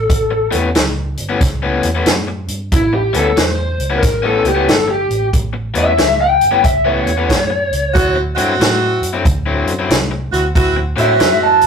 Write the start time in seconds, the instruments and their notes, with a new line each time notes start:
Already playing: lead electric guitar A4
0.10 fingered electric bass A1, kick, closed hi-hat
0.31 muted overdriven electric guitar stroke
0.51 fingered electric bass E2, overdriven electric guitar A2 G3 B3 C#4, closed hi-hat
0.75 fingered electric bass C#2, muted overdriven electric guitar stroke, snare, closed hi-hat
1.17 fingered electric bass G1, closed hi-hat
1.29 overdriven electric guitar A2 G3 B3 C#4
1.41 fingered electric bass C#2, muted overdriven electric guitar stroke, kick, snare, closed hi-hat
1.63 overdriven electric guitar A2 G3 B3 C#4
1.82 fingered electric bass E2, closed hi-hat
1.95 overdriven electric guitar A2 G3 B3 C#4
2.06 fingered electric bass F#2, snare, closed hi-hat
2.28 muted overdriven electric guitar stroke
2.47 fingered electric bass G2, closed hi-hat
2.72 fingered electric bass A1, lead electric guitar E4, kick, closed hi-hat
2.93 lead electric guitar G4, muted overdriven electric guitar stroke
3.13 fingered electric bass D2, overdriven electric guitar A2 G3 B3 C#4, lead electric guitar A4, closed hi-hat
3.36 fingered electric bass E2, lead electric guitar C5, muted overdriven electric guitar stroke, snare, closed hi-hat
3.78 fingered electric bass C#2, closed hi-hat
3.90 overdriven electric guitar A2 G3 B3 C#4
3.99 lead electric guitar A#4, muted overdriven electric guitar stroke, kick, closed hi-hat
4.03 fingered electric bass A1, snare
4.23 overdriven electric guitar A2 G3 B3 C#4, lead electric guitar A4
4.43 fingered electric bass C#2, closed hi-hat
4.48 lead electric guitar G4
4.55 overdriven electric guitar A2 G3 B3 C#4
4.68 fingered electric bass G1, lead electric guitar A4, snare, closed hi-hat
4.88 lead electric guitar G4, muted overdriven electric guitar stroke
5.09 fingered electric bass A1, closed hi-hat
5.33 fingered electric bass A1, kick, closed hi-hat
5.53 muted overdriven electric guitar stroke
5.74 fingered electric bass E2, overdriven electric guitar A2 G3 B3 C#4, closed hi-hat
5.78 lead electric guitar E5
5.98 fingered electric bass C#2, muted overdriven electric guitar stroke, snare, closed hi-hat
6.21 lead electric guitar G5
6.41 fingered electric bass G1, closed hi-hat
6.51 overdriven electric guitar A2 G3 B3 C#4
6.64 fingered electric bass C#2, lead electric guitar E5, muted overdriven electric guitar stroke, kick, closed hi-hat
6.85 overdriven electric guitar A2 G3 B3 C#4, lead electric guitar C#5
7.06 fingered electric bass E2, closed hi-hat
7.17 overdriven electric guitar A2 G3 B3 C#4
7.30 fingered electric bass F#2, kick, snare, closed hi-hat
7.50 muted overdriven electric guitar stroke
7.71 fingered electric bass C#2, closed hi-hat
7.94 fingered electric bass D2, horn section C4 E4 F#4, kick, closed hi-hat
8.16 muted overdriven electric guitar stroke
8.36 fingered electric bass G2, overdriven electric guitar D3 F#3 C4 E4, horn section C4 E4 F#4, closed hi-hat
8.59 fingered electric bass A2, muted overdriven electric guitar stroke, snare, closed hi-hat
9.01 fingered electric bass F#2, closed hi-hat
9.13 overdriven electric guitar D3 F#3 C4 E4
9.25 fingered electric bass D2, muted overdriven electric guitar stroke, kick, closed hi-hat
9.46 overdriven electric guitar D3 F#3 C4 E4
9.66 fingered electric bass F#2, closed hi-hat
9.79 overdriven electric guitar D3 F#3 C4 E4
9.89 fingered electric bass C2, snare, closed hi-hat
10.11 muted overdriven electric guitar stroke
10.31 fingered electric bass D2, horn section C4 E4 F#4, closed hi-hat
10.55 fingered electric bass D2, horn section C4 E4 F#4, kick, closed hi-hat
10.76 muted overdriven electric guitar stroke
10.96 fingered electric bass A2, overdriven electric guitar D3 F#3 C4 E4, horn section C4 E4 F#4, closed hi-hat
11.00 lead electric guitar E5
11.20 fingered electric bass F#2, muted overdriven electric guitar stroke, snare, closed hi-hat
11.43 lead electric guitar A5
11.61 fingered electric bass C2, closed hi-hat